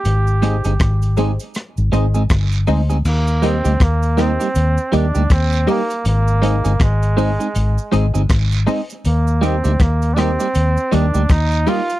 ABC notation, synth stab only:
X:1
M:4/4
L:1/8
Q:"Swing 16ths" 1/4=80
K:Eb
V:1 name="Synth stab"
z [EAce] z [EAce] z [EAce] z [EAce] | z [EGBe] z [EGBe] z [EGBe] z [EGBe] | z [EAce] z [EAce] z [EAce] z [EAce] | z [EGBe] z [EGBe] z [EGBe] z [EGBe] |]